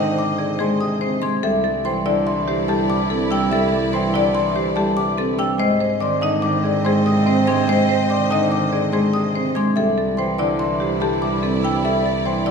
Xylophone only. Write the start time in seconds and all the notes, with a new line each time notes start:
0.19 D6
0.60 C6
0.81 D#6
1.23 G#6
1.44 E5
1.85 C6
2.27 C6
2.68 A5
2.90 D6
3.31 E6
3.52 E5
3.93 C6
4.35 C6
4.76 A5
4.97 D6
5.39 E6
5.59 D#5
6.01 D6
6.22 D#6
6.42 D6
6.85 C6
7.06 D#6
7.47 G#6
7.68 D#5
8.10 D6
8.31 D#6
8.52 D6
8.93 C6
9.13 D#6
9.55 G#6
9.76 E5
10.17 C6
10.38 D6
10.59 C6
11.01 A5
11.22 D6
11.64 E6
11.85 E5
12.26 C6
12.47 D6